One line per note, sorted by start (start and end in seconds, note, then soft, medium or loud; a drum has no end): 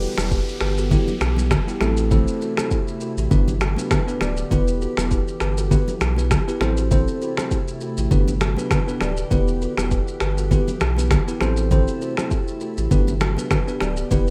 0.00 1.79 E3 medium
0.00 0.13 G3 medium
0.00 0.14 B3 medium
0.00 1.79 B3 medium
0.00 0.14 E4 medium
0.00 0.11 F#4 medium
0.00 0.14 G4 loud
0.00 1.79 G4 medium
0.00 0.11 A4 medium
0.00 downlifter medium
0.00 shaker medium
0.17 0.40 E1 medium
0.17 0.37 G3 medium
0.17 0.37 B3 medium
0.17 0.37 E4 medium
0.17 0.38 G4 medium
0.17 finger snap medium
0.17 cross-stick medium
0.17 high conga medium
0.17 shaker medium
0.31 0.41 E4 medium
0.31 0.41 G4 medium
0.31 kick medium
0.31 shaker medium
0.48 shaker soft
0.61 0.96 G1 loud
0.61 0.71 G4 medium
0.61 0.71 B4 medium
0.61 finger snap medium
0.61 cross-stick medium
0.61 shaker medium
0.78 0.86 F#4 medium
0.78 0.86 A4 medium
0.78 shaker medium
0.91 1.13 G3 medium
0.91 1.13 B3 medium
0.91 1.13 E4 medium
0.91 1.09 E4 medium
0.91 1.13 G4 loud
0.91 1.08 G4 medium
0.91 kick loud
0.91 low conga medium
0.91 shaker medium
1.08 high conga medium
1.08 shaker medium
1.21 1.56 B1 loud
1.21 finger snap medium
1.21 cross-stick medium
1.21 high conga medium
1.21 shaker medium
1.36 1.57 G3 medium
1.36 1.57 B3 medium
1.36 1.57 E4 medium
1.36 1.58 G4 medium
1.36 high conga medium
1.36 shaker medium
1.51 finger snap medium
1.51 kick medium
1.51 cross-stick loud
1.51 high conga medium
1.51 low conga medium
1.51 shaker medium
1.67 1.87 G3 medium
1.67 1.87 B3 medium
1.67 1.80 E4 medium
1.67 1.76 E4 medium
1.67 1.87 G4 medium
1.67 1.76 G4 medium
1.67 shaker medium
1.81 2.27 A1 loud
1.81 3.30 C3 medium
1.81 2.09 A3 medium
1.81 3.30 A3 medium
1.81 2.09 C4 medium
1.81 3.30 E4 medium
1.81 2.09 E4 medium
1.81 2.09 A4 loud
1.81 finger snap medium
1.81 cross-stick medium
1.81 high conga medium
1.81 shaker medium
1.97 2.06 F#4 medium
1.97 2.06 A4 medium
1.97 shaker medium
2.11 2.53 A3 medium
2.11 2.54 C4 medium
2.11 2.54 E4 medium
2.11 2.54 A4 loud
2.11 2.21 A4 medium
2.11 2.21 C5 medium
2.11 kick loud
2.11 low conga medium
2.11 shaker medium
2.28 shaker medium
2.42 2.51 F#4 medium
2.42 2.51 A4 medium
2.42 shaker medium
2.57 2.77 A3 medium
2.57 2.77 C4 medium
2.57 2.77 E4 medium
2.57 2.78 A4 medium
2.57 finger snap medium
2.57 cross-stick medium
2.57 high conga medium
2.57 shaker medium
2.71 2.81 E4 medium
2.71 2.81 G4 medium
2.71 kick medium
2.71 shaker medium
2.88 shaker soft
3.01 3.11 F#4 medium
3.01 3.11 A4 medium
3.01 shaker medium
3.17 3.28 A1 medium
3.17 3.26 E4 medium
3.17 3.26 G4 medium
3.17 shaker medium
3.31 3.77 G1 loud
3.31 4.50 D3 medium
3.31 3.53 B3 medium
3.31 6.58 B3 medium
3.31 3.53 D4 medium
3.31 6.58 G4 medium
3.31 3.53 G4 medium
3.31 3.53 B4 loud
3.31 kick loud
3.31 low conga medium
3.31 shaker medium
3.48 high conga medium
3.48 shaker medium
3.61 3.71 F#4 medium
3.61 3.71 A4 medium
3.61 finger snap medium
3.61 cross-stick loud
3.61 high conga medium
3.61 shaker medium
3.76 3.97 B3 medium
3.76 3.97 D4 medium
3.76 3.97 G4 medium
3.76 3.98 B4 medium
3.76 high conga medium
3.76 shaker medium
3.91 4.01 G4 medium
3.91 4.01 B4 medium
3.91 finger snap medium
3.91 kick medium
3.91 cross-stick loud
3.91 high conga medium
3.91 low conga medium
3.91 shaker medium
4.07 4.27 B3 medium
4.07 4.27 D4 medium
4.07 4.27 G4 medium
4.07 4.28 B4 medium
4.07 shaker medium
4.21 4.44 D1 medium
4.21 4.31 B4 medium
4.21 4.31 D5 medium
4.21 finger snap medium
4.21 cross-stick medium
4.21 high conga medium
4.21 shaker medium
4.37 shaker medium
4.51 4.86 E1 loud
4.51 6.59 E3 medium
4.51 4.93 B3 medium
4.51 4.94 E4 medium
4.51 4.94 G4 medium
4.51 4.61 G4 medium
4.51 4.94 B4 loud
4.51 4.61 B4 loud
4.51 kick loud
4.51 low conga medium
4.51 shaker medium
4.68 shaker medium
4.82 4.91 F#4 medium
4.82 4.91 A4 medium
4.82 shaker medium
4.97 5.20 E1 medium
4.97 5.17 B3 medium
4.97 5.17 E4 medium
4.97 5.17 G4 medium
4.97 5.18 B4 medium
4.97 finger snap medium
4.97 cross-stick medium
4.97 high conga medium
4.97 shaker medium
5.11 5.21 E4 medium
5.11 5.21 G4 medium
5.11 kick medium
5.11 shaker medium
5.28 shaker soft
5.40 5.76 G1 medium
5.40 5.51 G4 medium
5.40 5.51 B4 medium
5.40 finger snap medium
5.40 cross-stick medium
5.40 shaker medium
5.58 5.66 F#4 medium
5.58 5.65 A4 medium
5.58 shaker medium
5.71 5.93 B3 medium
5.71 5.93 E4 medium
5.71 5.89 E4 medium
5.71 5.93 G4 medium
5.71 5.88 G4 medium
5.71 5.93 B4 loud
5.71 kick loud
5.71 low conga medium
5.71 shaker medium
5.88 high conga medium
5.88 shaker medium
6.01 6.36 B1 loud
6.01 finger snap medium
6.01 cross-stick medium
6.01 high conga medium
6.01 shaker medium
6.16 6.37 B3 medium
6.16 6.37 E4 medium
6.16 6.38 G4 medium
6.16 6.38 B4 medium
6.16 high conga medium
6.16 shaker medium
6.31 finger snap medium
6.31 kick medium
6.31 cross-stick loud
6.31 high conga medium
6.31 low conga medium
6.31 shaker medium
6.47 6.67 B3 medium
6.47 6.60 E4 medium
6.47 6.56 E4 medium
6.47 6.67 G4 medium
6.47 6.56 G4 medium
6.47 6.68 B4 medium
6.47 shaker medium
6.61 7.07 A1 loud
6.61 8.10 C3 medium
6.61 8.10 A3 medium
6.61 6.89 C4 loud
6.61 6.89 E4 medium
6.61 8.10 E4 medium
6.61 6.89 A4 medium
6.61 6.89 C5 loud
6.61 finger snap medium
6.61 cross-stick medium
6.61 high conga medium
6.61 shaker medium
6.77 6.86 F#4 medium
6.77 6.86 A4 medium
6.77 shaker medium
6.91 7.34 C4 medium
6.91 7.34 E4 medium
6.91 7.34 A4 medium
6.91 7.01 A4 medium
6.91 7.34 C5 medium
6.91 7.01 C5 loud
6.91 kick loud
6.91 low conga medium
6.91 shaker medium
7.08 shaker medium
7.22 7.31 F#4 medium
7.22 7.31 A4 medium
7.22 shaker medium
7.37 7.57 C4 medium
7.37 7.57 E4 medium
7.37 7.58 A4 medium
7.37 7.58 C5 medium
7.37 finger snap medium
7.37 cross-stick medium
7.37 high conga medium
7.37 shaker medium
7.51 7.61 E4 medium
7.51 7.61 G4 medium
7.51 kick medium
7.51 shaker medium
7.68 shaker soft
7.81 7.91 F#4 medium
7.81 7.91 A4 medium
7.81 shaker medium
7.98 8.08 A1 medium
7.98 8.06 E4 medium
7.98 8.06 G4 medium
7.98 shaker medium
8.11 8.57 G1 loud
8.11 9.30 D3 medium
8.11 8.33 B3 medium
8.11 9.30 B3 medium
8.11 8.33 D4 medium
8.11 11.38 G4 medium
8.11 8.33 G4 medium
8.11 8.33 B4 loud
8.11 kick loud
8.11 low conga medium
8.11 shaker medium
8.28 high conga medium
8.28 shaker medium
8.41 8.51 F#4 medium
8.41 8.51 A4 medium
8.41 finger snap medium
8.41 cross-stick loud
8.41 high conga medium
8.41 shaker medium
8.57 8.77 B3 medium
8.57 8.77 D4 medium
8.57 8.77 G4 medium
8.57 8.78 B4 medium
8.57 high conga medium
8.57 shaker medium
8.71 8.81 G4 medium
8.71 8.81 B4 medium
8.71 finger snap medium
8.71 kick medium
8.71 cross-stick loud
8.71 high conga medium
8.71 low conga medium
8.71 shaker medium
8.87 9.07 B3 medium
8.87 9.07 D4 medium
8.87 9.08 G4 medium
8.87 9.08 B4 medium
8.87 shaker medium
9.01 9.24 D1 loud
9.01 9.11 B4 medium
9.01 9.11 D5 medium
9.01 finger snap medium
9.01 cross-stick medium
9.01 high conga medium
9.01 shaker medium
9.17 shaker medium
9.31 9.66 E1 loud
9.31 11.39 E3 medium
9.31 9.73 B3 medium
9.31 11.39 B3 medium
9.31 9.74 E4 medium
9.31 9.74 G4 medium
9.31 9.41 G4 medium
9.31 9.74 B4 medium
9.31 9.41 B4 loud
9.31 kick loud
9.31 low conga medium
9.31 shaker medium
9.48 shaker medium
9.62 9.71 F#4 medium
9.62 9.71 A4 medium
9.62 shaker medium
9.77 10.00 E1 medium
9.77 9.97 B3 medium
9.77 9.97 E4 medium
9.77 9.97 G4 medium
9.77 9.98 B4 medium
9.77 finger snap medium
9.77 cross-stick medium
9.77 high conga medium
9.77 shaker medium
9.91 10.01 E4 medium
9.91 10.01 G4 medium
9.91 kick medium
9.91 shaker medium
10.08 shaker soft
10.20 10.56 G1 loud
10.20 10.31 G4 medium
10.20 10.31 B4 medium
10.20 finger snap medium
10.20 cross-stick medium
10.20 shaker soft
10.38 10.46 F#4 medium
10.38 10.46 A4 medium
10.38 shaker medium
10.51 10.73 B3 medium
10.51 10.73 E4 medium
10.51 10.69 E4 medium
10.51 10.73 G4 medium
10.51 10.68 G4 medium
10.51 10.73 B4 loud
10.51 kick loud
10.51 low conga medium
10.51 shaker medium
10.68 high conga medium
10.68 shaker medium
10.81 11.16 B1 loud
10.81 finger snap medium
10.81 cross-stick loud
10.81 high conga medium
10.81 shaker medium
10.97 11.17 B3 medium
10.97 11.17 E4 medium
10.97 11.17 G4 medium
10.97 11.18 B4 medium
10.97 high conga medium
10.97 shaker medium
11.11 finger snap medium
11.11 kick medium
11.11 cross-stick loud
11.11 high conga medium
11.11 low conga medium
11.11 shaker medium
11.27 11.47 B3 medium
11.27 11.40 E4 medium
11.27 11.36 E4 medium
11.27 11.48 G4 medium
11.27 11.36 G4 medium
11.27 11.48 B4 medium
11.27 shaker medium
11.41 11.87 A1 loud
11.41 12.89 C3 medium
11.41 12.90 A3 medium
11.41 11.69 C4 medium
11.41 12.90 E4 medium
11.41 11.69 E4 medium
11.41 11.69 A4 medium
11.41 11.69 C5 loud
11.41 finger snap medium
11.41 cross-stick medium
11.41 high conga medium
11.41 shaker medium
11.57 11.66 F#4 medium
11.57 11.65 A4 medium
11.57 shaker medium
11.71 12.14 C4 medium
11.71 12.14 E4 medium
11.71 12.14 A4 medium
11.71 11.81 A4 medium
11.71 11.81 C5 medium
11.71 12.14 C5 loud
11.71 kick loud
11.71 low conga medium
11.71 shaker medium
11.88 shaker medium
12.02 12.11 F#4 medium
12.02 12.11 A4 medium
12.02 shaker medium
12.17 12.37 C4 medium
12.17 12.37 E4 medium
12.17 12.38 A4 medium
12.17 12.38 C5 medium
12.17 finger snap medium
12.17 cross-stick medium
12.17 high conga medium
12.17 shaker medium
12.31 12.41 E4 medium
12.31 12.41 G4 medium
12.31 kick medium
12.31 shaker medium
12.48 shaker soft
12.61 12.71 F#4 medium
12.61 12.71 A4 medium
12.61 shaker soft
12.78 12.88 A1 medium
12.78 12.86 E4 medium
12.78 12.86 G4 medium
12.78 shaker medium
12.91 13.37 G1 loud
12.91 14.10 D3 medium
12.91 13.13 B3 medium
12.91 14.30 B3 medium
12.91 13.13 D4 medium
12.91 14.30 G4 medium
12.91 13.13 G4 medium
12.91 13.13 B4 loud
12.91 kick loud
12.91 low conga medium
12.91 shaker medium
13.08 high conga medium
13.08 shaker medium
13.21 13.31 F#4 medium
13.21 13.31 A4 medium
13.21 finger snap medium
13.21 cross-stick loud
13.21 high conga medium
13.21 shaker medium
13.37 13.57 B3 medium
13.37 13.57 D4 medium
13.37 13.58 G4 medium
13.37 13.58 B4 medium
13.37 high conga medium
13.37 shaker medium
13.51 13.61 G4 medium
13.51 13.61 B4 medium
13.51 finger snap medium
13.51 kick medium
13.51 cross-stick loud
13.51 high conga medium
13.51 low conga medium
13.51 shaker medium
13.68 13.87 B3 medium
13.68 13.87 D4 medium
13.68 13.88 G4 medium
13.68 13.88 B4 medium
13.68 shaker medium
13.81 14.04 D1 medium
13.81 13.91 B4 medium
13.81 13.91 D5 medium
13.81 finger snap medium
13.81 cross-stick medium
13.81 high conga medium
13.81 shaker medium
13.97 shaker medium
14.11 14.30 E1 loud
14.11 14.30 E3 medium
14.11 14.30 B3 medium
14.11 14.30 E4 medium
14.11 14.30 G4 medium
14.11 14.21 G4 medium
14.11 14.30 B4 loud
14.11 14.21 B4 loud
14.11 kick loud
14.11 low conga medium
14.11 shaker medium